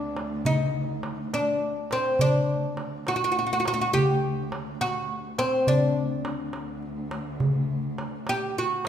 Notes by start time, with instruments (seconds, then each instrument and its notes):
Already playing: cello section D2, oud D4
0.17 darbuka tek
0.45 oud D#4, darbuka dum
1.03 darbuka tek
1.34 oud D4, darbuka tek
1.91 oud C4, darbuka tek
2.19 cello section D2, oud D4, darbuka dum
2.77 darbuka tek
3.07 oud F#4, darbuka tek
3.16 oud F#4
3.24 oud F#4
3.32 oud F#4
3.36 oud F#4, darbuka ka
3.47 oud F#4
3.53 oud F#4
3.60 oud F#4
3.65 oud F#4, darbuka tek
3.74 oud F#4
3.81 oud F#4
3.93 oud G4, darbuka dum
4.52 darbuka tek
4.81 oud F#4, darbuka tek
5.38 oud C4, darbuka tek
5.66 cello section D2, oud D4, darbuka dum
6.25 darbuka tek
6.53 darbuka tek
6.83 darbuka ka
7.11 darbuka tek
7.40 darbuka dum
7.98 darbuka tek
8.27 oud G4, darbuka tek
8.56 oud F#4, darbuka ka
8.85 darbuka tek